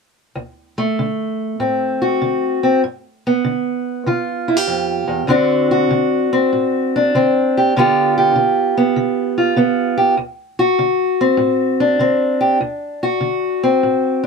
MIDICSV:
0, 0, Header, 1, 2, 480
1, 0, Start_track
1, 0, Tempo, 614125
1, 292, Time_signature, 4, 2, 24, 8
1, 5090, Tempo, 607903
1, 11212, End_track
2, 0, Start_track
2, 0, Title_t, "Steel-string acoustic guitar"
2, 0, Program_c, 0, 25
2, 277, Note_on_c, 0, 38, 61
2, 609, Note_on_c, 0, 57, 50
2, 735, Note_off_c, 0, 38, 0
2, 774, Note_on_c, 0, 50, 51
2, 1224, Note_off_c, 0, 50, 0
2, 1249, Note_on_c, 0, 45, 52
2, 1250, Note_on_c, 0, 60, 48
2, 1576, Note_on_c, 0, 66, 49
2, 1703, Note_off_c, 0, 45, 0
2, 1732, Note_on_c, 0, 50, 51
2, 2048, Note_off_c, 0, 60, 0
2, 2057, Note_on_c, 0, 60, 50
2, 2184, Note_off_c, 0, 50, 0
2, 2194, Note_off_c, 0, 57, 0
2, 2196, Note_off_c, 0, 60, 0
2, 2196, Note_off_c, 0, 66, 0
2, 2218, Note_on_c, 0, 43, 62
2, 2554, Note_on_c, 0, 59, 53
2, 2667, Note_off_c, 0, 43, 0
2, 2693, Note_on_c, 0, 50, 52
2, 3144, Note_off_c, 0, 50, 0
2, 3177, Note_on_c, 0, 50, 53
2, 3183, Note_on_c, 0, 65, 49
2, 3502, Note_on_c, 0, 64, 47
2, 3569, Note_off_c, 0, 64, 0
2, 3569, Note_on_c, 0, 67, 43
2, 3626, Note_off_c, 0, 50, 0
2, 3652, Note_on_c, 0, 41, 51
2, 3965, Note_off_c, 0, 41, 0
2, 3968, Note_on_c, 0, 40, 54
2, 4117, Note_off_c, 0, 40, 0
2, 4120, Note_off_c, 0, 65, 0
2, 4120, Note_on_c, 0, 38, 70
2, 4122, Note_off_c, 0, 59, 0
2, 4127, Note_on_c, 0, 50, 55
2, 4130, Note_off_c, 0, 67, 0
2, 4133, Note_on_c, 0, 60, 60
2, 4138, Note_on_c, 0, 62, 58
2, 4143, Note_on_c, 0, 66, 64
2, 4454, Note_off_c, 0, 66, 0
2, 4463, Note_on_c, 0, 66, 59
2, 4575, Note_off_c, 0, 38, 0
2, 4607, Note_off_c, 0, 50, 0
2, 4616, Note_on_c, 0, 50, 62
2, 4936, Note_off_c, 0, 60, 0
2, 4945, Note_on_c, 0, 60, 56
2, 5062, Note_off_c, 0, 50, 0
2, 5101, Note_on_c, 0, 45, 60
2, 5439, Note_off_c, 0, 62, 0
2, 5442, Note_on_c, 0, 62, 58
2, 5547, Note_off_c, 0, 45, 0
2, 5577, Note_off_c, 0, 60, 0
2, 5591, Note_on_c, 0, 50, 57
2, 5596, Note_on_c, 0, 60, 55
2, 5901, Note_off_c, 0, 66, 0
2, 5929, Note_on_c, 0, 67, 58
2, 6032, Note_off_c, 0, 50, 0
2, 6047, Note_off_c, 0, 60, 0
2, 6050, Note_off_c, 0, 67, 0
2, 6078, Note_on_c, 0, 43, 76
2, 6082, Note_on_c, 0, 50, 62
2, 6088, Note_on_c, 0, 59, 58
2, 6094, Note_off_c, 0, 62, 0
2, 6097, Note_on_c, 0, 65, 62
2, 6101, Note_on_c, 0, 67, 67
2, 6394, Note_off_c, 0, 67, 0
2, 6404, Note_on_c, 0, 67, 60
2, 6517, Note_off_c, 0, 43, 0
2, 6537, Note_off_c, 0, 50, 0
2, 6546, Note_on_c, 0, 50, 62
2, 6867, Note_off_c, 0, 59, 0
2, 6876, Note_on_c, 0, 59, 57
2, 6990, Note_off_c, 0, 50, 0
2, 7025, Note_on_c, 0, 50, 58
2, 7342, Note_off_c, 0, 65, 0
2, 7352, Note_on_c, 0, 65, 53
2, 7470, Note_off_c, 0, 50, 0
2, 7496, Note_off_c, 0, 59, 0
2, 7500, Note_on_c, 0, 50, 58
2, 7506, Note_on_c, 0, 59, 51
2, 7815, Note_off_c, 0, 67, 0
2, 7824, Note_on_c, 0, 67, 60
2, 7947, Note_off_c, 0, 50, 0
2, 7959, Note_off_c, 0, 67, 0
2, 7962, Note_off_c, 0, 59, 0
2, 7963, Note_off_c, 0, 65, 0
2, 7981, Note_on_c, 0, 38, 72
2, 8310, Note_on_c, 0, 66, 61
2, 8427, Note_off_c, 0, 38, 0
2, 8466, Note_on_c, 0, 50, 61
2, 8797, Note_on_c, 0, 60, 56
2, 8909, Note_off_c, 0, 50, 0
2, 8928, Note_on_c, 0, 45, 62
2, 9267, Note_on_c, 0, 62, 52
2, 9380, Note_off_c, 0, 45, 0
2, 9417, Note_off_c, 0, 60, 0
2, 9418, Note_on_c, 0, 50, 55
2, 9426, Note_on_c, 0, 60, 54
2, 9741, Note_off_c, 0, 66, 0
2, 9744, Note_on_c, 0, 67, 58
2, 9864, Note_off_c, 0, 50, 0
2, 9877, Note_off_c, 0, 67, 0
2, 9881, Note_off_c, 0, 60, 0
2, 9902, Note_on_c, 0, 38, 73
2, 10235, Note_on_c, 0, 66, 59
2, 10345, Note_off_c, 0, 38, 0
2, 10376, Note_on_c, 0, 50, 56
2, 10714, Note_on_c, 0, 60, 55
2, 10737, Note_off_c, 0, 62, 0
2, 10821, Note_off_c, 0, 50, 0
2, 10869, Note_on_c, 0, 45, 58
2, 11188, Note_on_c, 0, 62, 56
2, 11212, Note_off_c, 0, 45, 0
2, 11212, Note_off_c, 0, 60, 0
2, 11212, Note_off_c, 0, 62, 0
2, 11212, Note_off_c, 0, 66, 0
2, 11212, End_track
0, 0, End_of_file